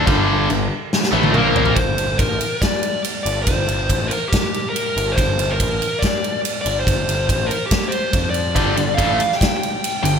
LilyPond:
<<
  \new Staff \with { instrumentName = "Lead electric guitar" } { \time 4/4 \key g \minor \tempo 4 = 141 r2. bes'4 | c''4 bes'4 d''4 r8 d''8 | c''4. bes'8 g'4 bes'4 | \tuplet 3/2 { c''4~ c''16 g'16 } bes'4 d''4 r8 d''8 |
c''4. bes'8 g'8 c''4 d''8~ | d''4 f''4 g''8 g''4. | }
  \new Staff \with { instrumentName = "Distorted electric guitar" } { \clef bass \time 4/4 \key g \minor <g, d g>4 <g, d>8 r4 <a, e a>8 <bes, f bes>4 | r1 | r1 | r1 |
r1 | <g, d g>8 <g, d>8 <a, e a>8 r2 <g, d>8 | }
  \new Staff \with { instrumentName = "Overdriven electric guitar" } { \clef bass \time 4/4 \key g \minor <g, d g>4 <g, d>8 r4 <a, e a>8 <bes, f bes>4 | r1 | r1 | r1 |
r1 | <g, d g>8 <g, d>8 <a, e a>8 r2 <g, d>8 | }
  \new Staff \with { instrumentName = "Picked electric bass" } { \clef bass \time 4/4 \key g \minor g,,4 g,,8 r4 a,,8 bes,,4 | g,,8 g,,8 a,,8 r2 g,,8 | g,,8 g,,8 a,,8 r2 g,,8 | g,,8 g,,8 a,,8 r2 g,,8 |
g,,8 g,,8 a,,8 r4. f,4 | g,,8 g,,8 a,,8 r2 g,,8 | }
  \new DrumStaff \with { instrumentName = "Drums" } \drummode { \time 4/4 <cymc bd>4 cymc4 sn16 sn8 tommh16 toml8 tomfh16 tomfh16 | <bd cymr>8 cymr8 <bd cymr>8 cymr8 <bd cymr sn>8 cymr8 cymr8 cymr8 | <bd cymr>8 cymr8 <bd cymr>8 cymr8 <bd cymr sn>8 cymr8 cymr8 cymr8 | <bd cymr>8 cymr8 <bd cymr>8 cymr8 <bd cymr sn>8 cymr8 cymr8 cymr8 |
<bd cymr>8 cymr8 <bd cymr>8 cymr8 <bd cymr sn>8 cymr8 <bd cymr>8 cymr8 | <bd cymr>8 cymr8 <bd cymr>8 cymr16 sn16 <bd cymr sn>8 cymr8 cymr8 cymr8 | }
>>